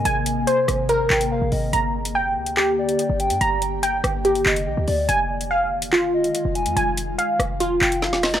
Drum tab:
HH |x-x-x-x-x--x--o-|x--x---x---xx-xx|x-x-x-x-xx-x--o-|x--x---x---xx-xx|
CP |----------x-----|--------x-------|----------x-----|--------x-------|
SD |------r---------|----------------|------r---------|----------------|

HH |x-x-x-x-x--x--o-|
CP |----------x-----|
SD |------r-----oooo|